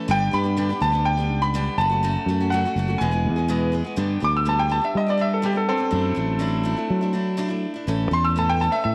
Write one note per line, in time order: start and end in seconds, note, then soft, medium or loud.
0.00 0.10 A4 medium
0.08 0.28 G1 medium
0.08 0.33 G2 medium
0.08 0.33 D3 medium
0.08 0.30 G3 medium
0.08 0.32 B3 medium
0.08 0.32 D4 medium
0.08 0.33 G4 medium
0.08 0.35 G5 loud
0.31 0.71 G2 medium
0.31 0.45 G3 medium
0.31 0.44 B3 medium
0.31 0.44 D4 medium
0.31 0.42 G4 medium
0.31 0.84 B5 loud
0.44 0.56 G3 soft
0.44 0.57 B3 soft
0.44 0.57 D4 soft
0.44 0.57 G4 medium
0.57 0.70 G2 medium
0.57 0.70 D3 medium
0.57 0.70 G3 medium
0.57 0.70 B3 medium
0.57 0.69 D4 medium
0.57 0.68 G4 medium
0.69 0.79 G3 soft
0.69 0.80 B3 soft
0.69 0.81 D4 medium
0.69 0.82 G4 medium
0.80 1.30 D2 medium
0.80 0.94 G3 medium
0.80 0.93 B3 medium
0.80 0.92 D4 medium
0.80 0.91 G4 medium
0.80 1.07 A5 medium
0.92 1.19 G3 soft
0.92 1.19 B3 medium
0.92 1.17 D4 medium
0.92 1.16 G4 medium
1.05 1.40 G5 medium
1.17 1.43 G3 soft
1.17 1.42 B3 medium
1.17 1.41 D4 medium
1.17 1.41 G4 medium
1.30 1.68 C#2 medium
1.42 1.53 G3 soft
1.42 1.54 B3 medium
1.42 1.54 D4 soft
1.42 1.55 G4 medium
1.42 1.80 B5 loud
1.54 1.79 G2 medium
1.54 1.79 D3 loud
1.54 1.78 G3 medium
1.54 1.78 B3 medium
1.54 1.79 D4 medium
1.54 1.80 G4 loud
1.78 2.16 F#1 loud
1.78 1.91 F#3 medium
1.78 1.91 A3 medium
1.78 1.90 C#4 medium
1.78 1.88 F#4 medium
1.78 2.54 A5 medium
1.90 2.03 F#3 soft
1.90 2.03 A3 soft
1.90 2.03 C#4 soft
1.90 2.03 F#4 medium
2.03 2.28 F#2 medium
2.03 2.28 C#3 medium
2.03 2.27 F#3 medium
2.03 2.28 A3 loud
2.03 2.29 C#4 medium
2.03 2.29 F#4 medium
2.26 2.64 F#2 medium
2.26 2.40 F#3 medium
2.26 2.40 A3 medium
2.26 2.39 C#4 medium
2.31 2.39 F#4 medium
2.40 2.53 F#3 soft
2.40 2.53 A3 soft
2.40 2.53 C#4 soft
2.40 2.53 F#4 medium
2.50 2.64 F#2 medium
2.50 2.65 C#3 medium
2.50 2.65 F#3 medium
2.50 2.65 A3 medium
2.50 2.65 C#4 medium
2.50 3.02 F#5 medium
2.54 2.64 F#4 medium
2.65 2.75 F#3 soft
2.65 2.76 A3 medium
2.65 2.77 C#4 medium
2.65 2.77 F#4 medium
2.76 2.95 F#1 medium
2.76 2.89 F#3 medium
2.76 2.89 A3 medium
2.76 2.88 C#4 medium
2.76 2.87 F#4 medium
2.88 3.01 F#3 soft
2.88 3.01 A3 soft
2.88 3.01 C#4 soft
2.88 3.01 F#4 medium
2.98 3.27 E1 loud
2.98 3.13 E2 medium
2.98 3.13 B2 medium
2.98 3.12 E3 medium
2.98 3.12 G#3 medium
2.98 3.11 B3 medium
2.98 3.69 G#5 medium
3.02 3.10 G#4 medium
3.11 3.38 E3 medium
3.11 3.37 G#3 medium
3.11 3.36 B3 medium
3.11 3.35 G#4 medium
3.25 3.81 E2 medium
3.36 3.48 E3 soft
3.36 3.49 G#3 soft
3.36 3.48 B3 medium
3.36 3.49 G#4 medium
3.48 3.73 E2 medium
3.48 3.73 B2 medium
3.48 3.71 E3 medium
3.48 3.72 G#3 medium
3.48 3.73 B3 medium
3.48 3.73 G#4 medium
3.72 3.85 E3 medium
3.72 3.85 G#3 medium
3.72 3.84 B3 medium
3.72 3.83 G#4 medium
3.84 3.97 E3 soft
3.84 3.97 G#3 soft
3.84 3.96 B3 medium
3.84 3.97 G#4 medium
3.96 4.22 G2 medium
3.96 4.16 G2 medium
3.96 4.22 D3 loud
3.96 4.19 G3 medium
3.96 4.20 B3 medium
3.96 4.21 D4 loud
3.96 4.22 G4 medium
4.20 4.79 D2 medium
4.20 4.45 G3 medium
4.20 4.45 B3 medium
4.20 4.45 D4 medium
4.24 4.35 D6 medium
4.37 4.47 E6 medium
4.45 4.70 G2 medium
4.45 4.71 D3 medium
4.45 4.68 G3 medium
4.45 4.68 B3 medium
4.45 4.70 D4 medium
4.45 4.70 G4 medium
4.45 4.59 A5 medium
4.59 4.71 G5 medium
4.69 4.83 G3 medium
4.69 4.83 B3 medium
4.69 4.82 D4 medium
4.69 4.80 G4 medium
4.69 4.83 A5 medium
4.82 5.08 G3 soft
4.82 5.08 B3 soft
4.82 5.07 D4 soft
4.82 5.05 G4 medium
4.82 4.95 E5 medium
4.95 5.70 G3 medium
4.95 5.08 D#5 medium
5.07 5.16 G3 soft
5.07 5.18 B3 soft
5.07 5.18 D4 medium
5.07 5.19 G4 medium
5.07 5.20 D5 medium
5.17 5.42 G3 medium
5.17 5.42 B3 medium
5.17 5.42 D4 medium
5.17 5.42 G4 medium
5.17 5.32 E5 medium
5.34 5.44 A4 medium
5.42 5.55 G2 medium
5.42 5.56 D3 medium
5.42 5.55 G3 medium
5.42 5.54 B3 medium
5.42 5.53 D4 medium
5.42 5.52 G4 medium
5.42 5.56 G4 medium
5.53 5.79 G3 soft
5.53 5.79 B3 soft
5.53 5.77 D4 soft
5.53 5.76 G4 medium
5.53 5.67 A4 medium
5.69 7.11 C4 medium
5.69 7.11 A4 loud
5.78 5.90 G3 soft
5.78 5.90 B3 medium
5.78 5.90 D4 soft
5.78 5.91 G4 medium
5.91 6.11 F#2 medium
5.91 6.13 F#3 medium
5.91 6.15 A3 medium
5.91 6.15 D4 medium
5.91 6.16 E4 medium
6.15 6.73 A1 medium
6.15 6.38 F#3 medium
6.15 6.38 A3 medium
6.15 6.39 D4 medium
6.15 6.40 E4 medium
6.39 6.62 F#3 medium
6.39 6.64 A3 medium
6.39 6.64 D4 medium
6.39 6.65 E4 medium
6.63 6.77 F#3 medium
6.63 6.78 A3 medium
6.63 6.76 D4 medium
6.63 6.75 E4 medium
6.77 7.02 A3 soft
6.77 7.01 D4 medium
6.77 7.00 E4 medium
6.90 7.65 F#3 medium
7.01 7.12 A3 medium
7.01 7.13 D4 medium
7.01 7.14 E4 medium
7.13 7.36 F#3 medium
7.13 7.36 A3 medium
7.13 7.37 D4 medium
7.13 7.38 E4 medium
7.37 7.50 F#3 medium
7.37 7.50 A3 medium
7.37 7.49 D4 loud
7.37 7.47 E4 loud
7.48 7.75 A3 medium
7.48 7.74 D4 medium
7.48 7.72 E4 medium
7.74 7.87 A3 soft
7.74 7.88 D4 medium
7.74 7.87 E4 medium
7.87 8.06 A1 medium
7.87 8.12 A2 medium
7.87 8.10 E3 medium
7.87 8.11 A3 loud
7.87 8.12 C#4 loud
7.87 8.13 A4 loud
8.11 8.68 E2 medium
8.11 8.35 E3 medium
8.11 8.36 A3 medium
8.11 8.36 C#4 medium
8.11 8.24 C6 loud
8.24 8.36 E6 medium
8.36 8.61 A2 medium
8.36 8.59 E3 medium
8.36 8.60 A3 medium
8.36 8.61 C#4 medium
8.36 8.62 A4 medium
8.36 8.49 A5 medium
8.50 8.61 G5 loud
8.60 8.73 E3 medium
8.60 8.74 A3 medium
8.60 8.74 C#4 medium
8.60 8.72 A4 medium
8.60 8.72 A5 medium
8.72 8.95 A3 soft
8.72 8.95 C#4 soft
8.72 8.95 A4 medium
8.72 8.82 E5 medium
8.84 8.95 A2 medium
8.84 8.95 E5 medium